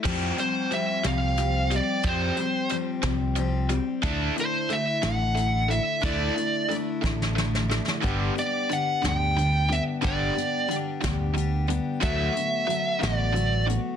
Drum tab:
CC |x-----------|------------|------------|------------|
HH |--x-x-x-x-x-|x-x-x-x-x-x-|x-x-x-x-x-x-|x-x-x-------|
SD |------o-----|------o-----|------o-----|------oooooo|
BD |o-----------|o-----o-----|o-----------|o-----o-----|

CC |------------|------------|------------|
HH |x-x-x-x-x-x-|x-x-x-x-x-x-|x-x-x-x-x-x-|
SD |------o-----|------o-----|------o-----|
BD |o-----------|o-----o-----|o-----------|